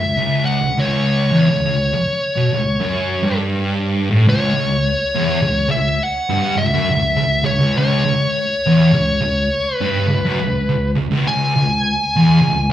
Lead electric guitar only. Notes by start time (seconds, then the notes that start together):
Already playing: E5
0.45 F#5
0.80 C#5
4.29 C#5
5.71 E5
6.03 F#5
6.58 E5
7.46 C#5
7.78 C#5
9.76 B4
11.28 G#5